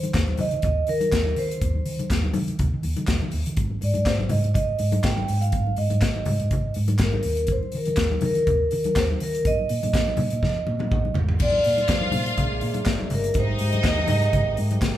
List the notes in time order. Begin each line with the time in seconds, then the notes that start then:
Already playing: C5
0.03 D#3, closed hi-hat, high conga
0.14 D#2, kick, snare, clap, closed hi-hat
0.28 high conga
0.37 D#3 D#5, open hi-hat, muted conga, high conga, low conga
0.51 D#3, closed hi-hat
0.62 D#2 D#5, kick, closed hi-hat, low conga
0.87 D#3 A#4, open hi-hat, muted conga
1.00 closed hi-hat, high conga
1.12 D#2, kick, snare, clap, closed hi-hat, muted conga
1.26 high conga
1.36 D#3 C5, open hi-hat, muted conga
1.51 closed hi-hat
1.61 D#2, kick, closed hi-hat, muted conga
1.76 high conga
1.86 D#3, open hi-hat
1.99 D#3, closed hi-hat, high conga
2.10 D#2, kick, snare, clap, closed hi-hat
2.24 high conga
2.34 D#3, open hi-hat, muted conga, high conga, low conga
2.48 D#3, closed hi-hat
2.59 D#2, kick, closed hi-hat, muted conga, low conga
2.74 D#3
2.83 D#2, open hi-hat, muted conga
2.97 D#3, closed hi-hat, high conga
3.07 D#2, kick, snare, clap, closed hi-hat
3.22 D#3, high conga
3.31 D#2, open hi-hat, muted conga
3.46 D#3, closed hi-hat
3.57 G#1, kick, closed hi-hat, muted conga
3.71 high conga
3.81 G#2 D5, open hi-hat, muted conga
3.94 G#2, closed hi-hat, high conga
4.06 G#1 C5, kick, snare, clap, closed hi-hat
4.19 high conga
4.29 G#2 D#5, open hi-hat, muted conga, high conga, low conga
4.44 G#2, closed hi-hat
4.54 G#1 D#5, kick, closed hi-hat, low conga
4.79 G#2, open hi-hat, muted conga
4.92 closed hi-hat, high conga
5.04 G#1 G5, kick, snare, clap, closed hi-hat
5.17 high conga
5.28 G#2, open hi-hat, muted conga
5.41 F5, closed hi-hat
5.52 G#1, kick, closed hi-hat, muted conga
5.67 high conga
5.77 G#2 D#5, open hi-hat, muted conga
5.90 G#2, closed hi-hat, high conga
6.01 G#1, kick, snare, clap, closed hi-hat, muted conga
6.16 high conga
6.25 G#2, open hi-hat, muted conga, high conga, low conga
6.40 G#2, closed hi-hat
6.51 G#1, kick, closed hi-hat, muted conga, low conga
6.74 G#2, open hi-hat, muted conga
6.88 closed hi-hat, high conga
6.98 G#1, kick, snare, clap, closed hi-hat, muted conga
7.03 A#4
7.13 high conga
7.23 D#2, open hi-hat
7.37 closed hi-hat
7.47 kick, closed hi-hat, muted conga
7.52 C5
7.63 high conga
7.72 D#3, open hi-hat, muted conga
7.77 A#4
7.85 D#3, closed hi-hat, high conga
7.97 D#2, kick, snare, clap, closed hi-hat
8.11 high conga
8.21 D#3, open hi-hat, muted conga, high conga, low conga
8.26 A#4
8.35 D#3, closed hi-hat
8.47 D#2, kick, closed hi-hat, muted conga, low conga
8.71 D#3, open hi-hat, muted conga
8.84 closed hi-hat, high conga
8.96 D#2 C5, kick, snare, clap, closed hi-hat, muted conga
9.11 high conga
9.20 D#3 A#4, open hi-hat
9.35 closed hi-hat
9.45 A#1 D#5, kick, closed hi-hat, muted conga
9.59 high conga
9.69 A#2, open hi-hat, muted conga
9.83 A#2, closed hi-hat, high conga
9.94 A#1, kick, snare, clap, closed hi-hat
10.07 high conga
10.17 A#2, open hi-hat, muted conga, high conga, low conga
10.30 A#2, closed hi-hat
10.43 F2, kick, snare, muted conga, low conga
10.67 A#2, high tom, muted conga
10.79 high tom, high conga
10.91 A#1, kick, mid tom, muted conga
11.05 high conga
11.14 G#1, floor tom, muted conga, low conga
11.29 floor tom
11.39 A#1 C3 G#3 A#3 D4 F4 D5 F5, kick, crash, muted conga
11.52 high conga
11.64 A#2, open hi-hat
11.77 closed hi-hat, high conga
11.88 F2 C5, kick, snare, clap, closed hi-hat
12.01 high conga
12.12 A#2, open hi-hat, muted conga, high conga, low conga
12.26 closed hi-hat
12.38 A#1 G#4, kick, closed hi-hat, low conga
12.52 A#1
12.61 A#2, open hi-hat, muted conga
12.74 closed hi-hat, high conga
12.85 F1, kick, snare, clap, closed hi-hat
13.00 high conga
13.10 G1, open hi-hat, low conga
13.15 A#4
13.24 closed hi-hat
13.34 G#1 D#4 G4 D#5, kick, closed hi-hat
13.39 C5
13.50 high conga
13.59 G#2, open hi-hat
13.73 closed hi-hat, high conga
13.84 D#2 D#5, kick, snare, clap, closed hi-hat, muted conga
13.98 high conga
14.08 G#2 D#5, open hi-hat, muted conga, high conga, low conga
14.22 closed hi-hat
14.33 G#1, kick, closed hi-hat, low conga
14.47 G#1
14.57 G#2, open hi-hat, muted conga
14.71 closed hi-hat, high conga
14.81 F1, kick, snare, clap, closed hi-hat